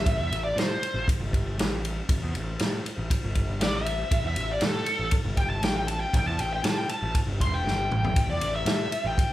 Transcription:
0.00 0.17 E5 loud
0.06 0.17 A1 loud
0.06 kick loud
0.06 ride medium
0.18 0.29 E2 medium
0.18 0.43 E5 medium
0.31 0.52 A1 medium
0.31 ride medium
0.44 0.57 D5 medium
0.56 0.77 A2 medium
0.56 1.06 C5 medium
0.56 snare loud
0.56 ride medium
0.83 ride medium
0.94 1.05 A1 medium
1.08 kick loud
1.08 ride loud
1.20 1.59 G1 medium
1.33 kick medium
1.33 ride medium
1.59 2.00 A1 medium
1.59 snare loud
1.59 ride loud
1.85 ride medium
2.09 2.19 A1 medium
2.09 kick loud
2.09 ride loud
2.22 2.32 E2 loud
2.35 2.56 A1 medium
2.35 ride medium
2.59 2.81 A2 medium
2.59 snare medium
2.59 ride medium
2.86 ride medium
2.98 3.08 A1 medium
3.10 kick loud
3.10 ride loud
3.24 3.61 G1 medium
3.35 kick medium
3.35 ride medium
3.61 4.03 A1 loud
3.61 3.74 D5 loud
3.61 snare loud
3.61 ride medium
3.76 4.24 E5 loud
3.86 ride medium
4.11 4.22 A1 medium
4.11 kick loud
4.11 ride loud
4.24 4.34 E2 medium
4.24 4.50 E5 medium
4.36 4.57 A1 medium
4.36 ride medium
4.53 4.63 D5 medium
4.61 4.83 A2 medium
4.61 snare loud
4.61 ride medium
4.65 5.13 A4 loud
4.86 ride medium
4.99 5.10 A1 medium
5.11 kick loud
5.11 ride medium
5.25 5.63 G1 loud
5.37 5.49 G5 medium
5.37 kick medium
5.37 ride medium
5.50 5.63 A5 medium
5.63 6.04 A1 medium
5.63 5.75 G5 medium
5.63 snare medium
5.63 ride medium
5.76 5.87 G5 loud
5.87 6.00 A5 medium
5.87 ride medium
6.00 6.13 G5 loud
6.14 6.24 A1 loud
6.14 6.27 G5 loud
6.14 kick loud
6.14 ride medium
6.26 6.37 E2 loud
6.26 6.40 A5 medium
6.39 6.60 A1 medium
6.39 6.52 G5 medium
6.39 ride medium
6.53 6.64 G5 medium
6.64 6.85 A2 medium
6.64 6.78 A5 loud
6.64 snare loud
6.64 ride medium
6.78 6.89 G5 medium
6.89 7.14 A5 loud
6.89 ride medium
7.02 7.13 A1 medium
7.15 kick loud
7.15 ride medium
7.27 7.40 G1 medium
7.40 7.64 E1 medium
7.40 7.53 C6 loud
7.40 kick medium
7.40 ride medium
7.54 8.27 G5 medium
7.65 7.88 G1 medium
7.65 snare medium
7.91 8.13 A1 medium
7.91 mid tom medium
8.04 floor tom medium
8.16 8.27 A1 medium
8.16 kick loud
8.16 ride loud
8.28 8.39 E2 medium
8.28 8.54 D5 loud
8.41 8.62 A1 medium
8.41 ride medium
8.56 9.04 E5 loud
8.65 8.87 A2 medium
8.65 snare loud
8.65 ride medium
8.92 ride medium
9.04 9.15 A1 medium
9.04 9.33 G5 loud
9.18 kick loud
9.18 ride medium

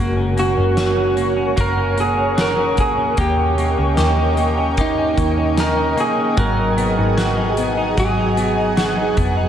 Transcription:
0.00 0.54 F#1 medium
0.00 0.27 F#3 medium
0.00 0.36 A#3 medium
0.00 0.16 C#4 medium
0.00 0.76 F#4 medium
0.00 6.34 A#4 medium
0.00 3.14 C#5 medium
0.00 3.14 F#5 medium
0.00 6.34 C#6 medium
0.17 0.57 C#4 soft
0.37 1.16 A#3 medium
0.37 1.60 F#4 medium
0.37 closed hi-hat medium
0.57 1.54 F#1 medium
0.57 0.97 C#4 soft
0.77 1.56 F#4 medium
0.77 snare medium
0.77 closed hi-hat medium
0.97 1.36 C#4 soft
1.17 1.56 A#3 medium
1.17 closed hi-hat soft
1.37 1.77 C#4 medium
1.57 2.78 F#1 medium
1.57 1.96 A#3 medium
1.57 2.36 F#4 medium
1.57 kick medium
1.57 closed hi-hat medium
1.61 2.00 A#4 medium
1.77 2.17 C#4 medium
1.97 2.77 A#3 medium
1.97 2.40 G#4 medium
1.97 closed hi-hat soft
2.17 2.57 C#4 medium
2.37 3.17 F#4 medium
2.37 2.80 A#4 medium
2.37 snare medium
2.37 closed hi-hat medium
2.57 2.97 C#4 medium
2.77 3.16 C#2 medium
2.77 3.17 A#3 medium
2.77 3.20 G#4 medium
2.77 kick medium
2.77 closed hi-hat medium
2.97 3.37 C#4 soft
3.17 3.75 D#2 medium
3.17 3.57 A#3 medium
3.17 3.96 G4 medium
3.17 4.35 G4 medium
3.17 9.49 D#5 medium
3.17 6.35 G5 medium
3.17 kick loud
3.17 closed hi-hat medium
3.38 3.76 C#4 medium
3.58 4.37 A#3 medium
3.58 closed hi-hat soft
3.78 3.97 C#2 medium
3.78 4.17 C#4 soft
3.97 5.14 D#2 medium
3.97 4.77 G4 medium
3.97 snare medium
3.97 closed hi-hat medium
4.18 4.56 C#4 medium
4.37 4.77 A#3 medium
4.37 closed hi-hat soft
4.57 4.97 C#4 medium
4.77 5.17 A#3 medium
4.77 5.62 D#4 medium
4.77 5.58 G4 medium
4.77 kick medium
4.77 closed hi-hat medium
4.98 5.36 C#4 medium
5.18 5.94 D#2 medium
5.18 5.96 A#3 medium
5.18 kick medium
5.18 closed hi-hat soft
5.37 5.76 C#4 medium
5.58 6.00 A#4 medium
5.58 snare medium
5.58 closed hi-hat medium
5.77 6.16 C#4 medium
5.97 6.45 A#3 medium
5.97 6.39 G#4 medium
5.97 closed hi-hat medium
6.17 6.45 C#4 medium
6.37 6.95 G#1 medium
6.37 7.97 F#3 medium
6.37 7.17 F#4 medium
6.37 9.49 G#4 medium
6.37 7.54 A#4 medium
6.37 9.49 F#5 medium
6.37 9.49 G#5 medium
6.37 kick loud
6.37 closed hi-hat medium
6.57 6.96 D#4 medium
6.77 7.56 B3 medium
6.77 closed hi-hat medium
6.98 7.94 G#1 medium
6.98 7.36 D#4 medium
7.17 7.98 F#4 medium
7.17 snare medium
7.17 closed hi-hat medium
7.37 7.76 D#4 medium
7.57 8.36 B3 medium
7.57 closed hi-hat soft
7.77 8.16 D#4 medium
7.97 9.13 G#1 medium
7.97 9.49 F#3 medium
7.97 8.77 F#4 medium
7.97 8.75 G#4 medium
7.97 kick medium
7.97 closed hi-hat medium
8.18 8.56 D#4 medium
8.37 9.16 B3 medium
8.37 closed hi-hat soft
8.57 8.96 D#4 medium
8.77 9.49 F#4 medium
8.77 snare medium
8.77 closed hi-hat medium
8.97 9.36 D#4 medium
9.17 9.49 F1 medium
9.17 9.49 B3 medium
9.17 kick medium
9.17 closed hi-hat soft
9.37 9.49 D#4 medium

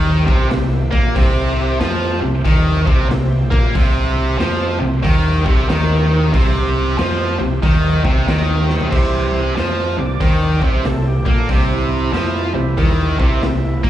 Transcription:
0.00 0.25 D#2 medium
0.00 0.25 D#3 medium
0.00 1.12 G4 medium
0.00 1.12 C5 medium
0.00 1.12 E5 medium
0.26 0.50 C2 medium
0.26 0.48 C3 medium
0.26 kick medium
0.49 0.90 C2 medium
0.49 0.84 C3 medium
0.49 snare loud
0.49 open hi-hat medium
0.91 1.14 A#2 medium
0.91 1.15 A#3 loud
0.91 kick medium
1.15 1.77 C2 loud
1.15 1.80 C3 loud
1.15 3.73 G4 medium
1.15 3.73 C5 medium
1.15 3.73 E5 medium
1.15 kick loud
1.15 open hi-hat medium
1.80 2.20 F2 loud
1.80 2.21 F3 loud
1.80 snare loud
1.80 open hi-hat soft
2.02 snare soft
2.21 2.44 C2 medium
2.21 2.41 C3 medium
2.45 2.84 D#2 medium
2.45 2.86 D#3 loud
2.45 kick loud
2.45 open hi-hat medium
2.86 3.08 C2 medium
2.86 3.08 C3 medium
2.86 kick medium
3.09 3.48 C2 medium
3.09 3.43 C3 medium
3.09 snare loud
3.09 open hi-hat soft
3.51 3.74 A#2 medium
3.51 3.74 A#3 loud
3.51 kick loud
3.74 4.36 C2 loud
3.74 4.38 C3 loud
3.74 6.32 G4 medium
3.74 6.32 C5 medium
3.74 6.32 E5 medium
3.74 kick loud
3.74 open hi-hat medium
4.38 4.78 F2 loud
4.38 4.79 F3 loud
4.38 snare loud
4.38 open hi-hat soft
4.80 5.03 C2 medium
4.80 4.99 C3 medium
5.03 5.43 D#2 medium
5.03 5.44 D#3 medium
5.03 kick loud
5.03 open hi-hat medium
5.46 5.68 C2 medium
5.46 5.68 C3 medium
5.46 kick loud
5.69 6.30 D#2 medium
5.69 6.33 D#3 medium
5.69 snare loud
5.69 open hi-hat medium
6.33 6.94 C2 loud
6.33 6.97 C3 loud
6.33 8.89 G4 medium
6.33 8.90 C5 medium
6.33 8.90 E5 medium
6.33 kick loud
6.33 open hi-hat medium
6.98 7.36 F2 medium
6.98 7.38 F3 medium
6.98 snare medium
6.98 open hi-hat soft
7.20 snare soft
7.39 7.61 C2 medium
7.39 7.58 C3 medium
7.63 8.02 D#2 medium
7.63 8.03 D#3 loud
7.63 kick loud
7.63 open hi-hat medium
8.04 8.26 C2 medium
8.04 8.27 C3 loud
8.04 kick loud
8.27 8.88 D#2 medium
8.27 8.90 D#3 medium
8.27 snare loud
8.27 open hi-hat soft
8.70 snare medium
8.81 floor tom medium
8.90 9.52 C2 medium
8.90 9.55 C3 loud
8.90 kick loud
8.90 crash loud
8.95 9.41 E3 soft
8.95 9.41 G3 soft
8.95 9.42 C4 medium
9.56 9.95 F2 medium
9.56 9.96 F3 medium
9.56 snare medium
9.56 open hi-hat medium
9.78 snare soft
9.98 10.19 C2 medium
9.98 10.16 C3 medium
9.98 10.20 D5 medium
10.20 10.59 D#2 medium
10.20 10.61 D#3 medium
10.20 10.41 C5 medium
10.20 kick loud
10.20 open hi-hat medium
10.42 10.63 D5 medium
10.61 10.83 C2 medium
10.61 10.84 C3 medium
10.61 10.85 C5 medium
10.61 kick medium
10.85 11.23 C2 medium
10.85 11.19 C3 medium
10.85 11.06 A4 medium
10.85 snare loud
10.85 open hi-hat medium
11.08 11.28 G4 medium
11.26 11.48 A#2 medium
11.26 11.48 A#3 loud
11.26 11.49 A4 medium
11.26 kick loud
11.49 12.10 C2 loud
11.49 12.13 C3 loud
11.49 11.71 G4 medium
11.49 kick loud
11.49 open hi-hat medium
11.72 11.91 E4 medium
11.92 13.82 E4 medium
12.13 12.52 F2 loud
12.13 12.54 F3 loud
12.13 snare loud
12.13 open hi-hat medium
12.35 snare soft
12.54 12.76 C2 medium
12.54 12.73 C3 medium
12.54 12.93 E3 soft
12.54 12.93 G3 soft
12.54 12.93 C4 medium
12.78 13.17 D#2 medium
12.78 13.18 D#3 medium
12.78 kick loud
12.78 open hi-hat medium
13.19 13.41 C2 medium
13.19 13.42 C3 loud
13.19 kick medium
13.42 13.81 C2 medium
13.42 13.76 C3 medium
13.42 snare loud
13.42 open hi-hat medium
13.84 13.90 A#2 medium
13.84 13.90 A#3 loud
13.84 kick loud

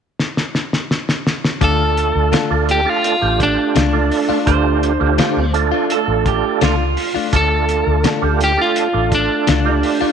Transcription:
0.19 snare medium
0.37 snare medium
0.55 snare medium
0.73 snare medium
0.91 snare medium
1.09 snare medium
1.27 snare medium
1.45 snare loud
1.61 2.11 D2 medium
1.61 1.83 D3 medium
1.61 2.37 A3 medium
1.61 1.83 A3 medium
1.61 2.38 D4 medium
1.61 1.83 D4 medium
1.61 2.38 F4 medium
1.61 1.83 F4 medium
1.61 2.38 A4 medium
1.61 2.67 A4 medium
1.61 kick loud
1.61 closed hi-hat medium
1.97 closed hi-hat medium
2.15 2.32 D2 medium
2.32 2.54 D3 medium
2.32 2.54 A3 medium
2.32 2.55 D4 medium
2.32 2.55 F4 medium
2.32 snare loud
2.32 closed hi-hat medium
2.50 2.84 D2 medium
2.50 2.81 A3 medium
2.50 2.81 D4 medium
2.50 2.81 F4 medium
2.50 2.82 A4 medium
2.69 2.89 G4 medium
2.69 closed hi-hat medium
2.85 3.16 A3 medium
2.85 3.16 D4 medium
2.85 3.17 F4 medium
2.85 3.17 A4 medium
2.89 3.40 F4 medium
3.04 closed hi-hat medium
3.21 3.55 A1 medium
3.21 3.83 A3 medium
3.21 3.83 D4 medium
3.21 3.83 F4 medium
3.21 3.83 G4 medium
3.40 5.52 D4 medium
3.40 kick medium
3.40 closed hi-hat medium
3.75 4.09 C#2 medium
3.75 3.97 D3 medium
3.75 3.97 A3 medium
3.75 3.98 D4 medium
3.75 3.98 F4 medium
3.75 snare loud
3.75 closed hi-hat medium
3.92 4.39 A3 medium
3.92 4.39 D4 medium
3.92 4.39 F4 medium
3.92 4.39 A4 medium
4.12 open hi-hat medium
4.29 4.51 A3 soft
4.29 4.51 D4 medium
4.29 4.50 F4 medium
4.29 muted fingered electric bass stroke soft
4.46 4.97 D2 medium
4.46 4.92 A3 medium
4.46 4.93 D4 medium
4.46 4.93 F4 medium
4.46 4.93 G4 loud
4.46 5.87 C5 loud
4.46 kick loud
4.46 closed hi-hat medium
4.83 closed hi-hat medium
4.99 5.17 D2 medium
4.99 5.46 A3 medium
4.99 5.46 D4 medium
4.99 5.46 F4 medium
4.99 5.46 G4 medium
5.18 5.40 D3 medium
5.18 5.40 A3 medium
5.18 5.40 D4 medium
5.18 5.41 F4 medium
5.18 snare loud
5.18 closed hi-hat medium
5.37 5.70 D2 medium
5.54 6.76 A3 medium
5.54 6.76 D4 medium
5.54 6.76 F4 medium
5.54 6.76 A4 medium
5.54 closed hi-hat medium
5.72 5.95 A3 soft
5.72 5.94 D4 soft
5.72 5.93 F4 medium
5.90 6.26 A4 medium
5.90 closed hi-hat medium
6.08 6.41 A1 medium
6.26 6.61 G4 medium
6.26 kick medium
6.26 closed hi-hat soft
6.61 6.95 C#2 medium
6.61 6.83 D3 medium
6.61 6.83 A3 medium
6.61 6.83 D4 medium
6.61 6.84 F4 medium
6.61 7.15 F4 medium
6.61 snare loud
6.61 closed hi-hat medium
6.97 open hi-hat medium
7.15 7.37 A3 soft
7.15 7.37 D4 soft
7.15 7.36 F4 medium
7.15 muted fingered electric bass stroke soft
7.33 7.83 D2 medium
7.33 8.09 A3 medium
7.33 8.09 D4 medium
7.33 8.09 F4 medium
7.33 8.10 A4 medium
7.33 8.39 A4 medium
7.33 kick loud
7.33 closed hi-hat medium
7.69 closed hi-hat medium
7.87 8.03 D2 medium
8.04 8.26 D3 medium
8.04 8.26 A3 medium
8.04 8.26 D4 medium
8.04 8.27 F4 medium
8.04 snare loud
8.04 closed hi-hat medium
8.22 8.55 D2 medium
8.22 8.53 A3 medium
8.22 8.53 D4 medium
8.22 8.53 F4 medium
8.22 8.53 G4 medium
8.41 8.59 G4 medium
8.41 snare soft
8.41 closed hi-hat medium
8.57 8.88 A3 medium
8.57 8.88 D4 medium
8.57 8.89 F4 medium
8.57 8.89 A4 medium
8.61 9.12 F4 medium
8.76 closed hi-hat medium
8.93 9.27 A1 medium
8.93 9.54 A3 medium
8.93 9.55 D4 medium
8.93 9.55 F4 medium
8.93 9.55 A4 medium
9.12 10.12 D4 medium
9.12 kick medium
9.12 closed hi-hat medium
9.47 9.81 C#2 medium
9.47 9.69 D3 medium
9.47 9.69 A3 medium
9.47 9.69 D4 medium
9.47 9.70 F4 medium
9.47 snare loud
9.47 closed hi-hat medium
9.65 10.11 A3 medium
9.65 10.11 D4 medium
9.65 10.11 F4 medium
9.65 10.11 G4 medium
9.83 open hi-hat medium
10.01 10.12 A3 soft
10.01 10.12 D4 medium
10.01 10.12 F4 medium
10.01 muted fingered electric bass stroke soft

